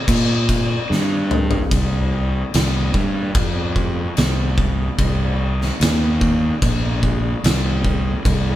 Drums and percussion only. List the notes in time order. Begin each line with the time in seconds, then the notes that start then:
0.08 kick, crash
0.49 kick, crash
0.92 snare
1.31 mid tom
1.51 floor tom
1.71 kick, crash
2.54 snare, crash
2.94 kick
3.35 kick, crash
3.76 kick
4.17 snare, crash
4.58 kick
4.99 kick, crash
5.62 snare
5.81 snare, crash
6.21 kick
6.62 kick, crash
7.03 kick
7.44 snare, crash
7.85 kick
8.25 kick, crash